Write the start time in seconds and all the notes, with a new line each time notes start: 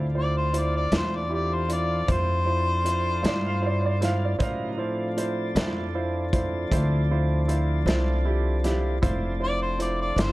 Already playing: D2 C4 D4 F4 A4
0.15 E4 F4 C5 D5
0.37 C5
0.53 E4 F4 C5, closed hi-hat
0.58 D5
0.76 D5
0.92 E2 E4 F4 C5, snare, closed hi-hat
0.96 C5
1.16 D5
1.29 E4 F4 G4
1.34 D5
1.53 C5
1.69 E4 F4 D5, closed hi-hat
1.73 D5
2.08 F2 E4 F4 C5, kick, closed hi-hat
2.45 E4 F4 C5
2.84 E4 F4 C5, closed hi-hat
3.23 G2 E4 F4 C5, snare, closed hi-hat
3.28 D5
3.47 F5
3.61 E4 F4 C5
3.66 D5
3.81 C#5
3.86 D5
4.01 E4 F4 C5 F5, snare, closed hi-hat
4.25 D5
4.39 A2 C#3 F#3 D#4 E4 F4 A#4 C5 D5, kick, closed hi-hat
4.43 F5
4.78 F3 C4 D4 E4 F4 A4 C5
5.17 E4 F4 C5, closed hi-hat
5.55 F2 E4 F4 C5, snare, closed hi-hat
5.95 E4 F4 C5
6.33 E4 F4 C5, kick, closed hi-hat
6.71 D2 E4 F4 C5, kick, closed hi-hat
7.11 E4 F4 C5
7.48 E4 F4 C5, closed hi-hat
7.86 C2 E4 F4 C5, snare, closed hi-hat
8.25 E4 F4 G4
8.64 E4 F4 G4, snare, closed hi-hat
9.02 F1 F3 C4 D4 E4 F4 A4 C5, kick, closed hi-hat
9.40 E4 F4 C5 D5
9.62 C5
9.79 E4 F4 C5 D5, closed hi-hat
10.01 D5
10.16 G1 E4 F4 C5, snare, closed hi-hat
10.21 C5